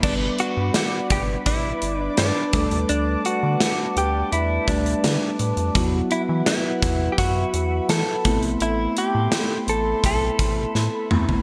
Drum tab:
CC |x---------------|----------------|----------------|----------------|
HH |--x-x-x-x-x-x-xx|x-x-x-x-x-xxx-xx|x-x-x-x-x-x-x-xx|x-x-x-x-x-x-----|
SD |----o-------o---|----o-------o---|----o-------o---|----o-------o---|
T2 |----------------|----------------|----------------|--------------o-|
FT |----------------|----------------|----------------|---------------o|
BD |o-----o-o-----o-|----------o-----|o-----o-o-----o-|--------o-o-----|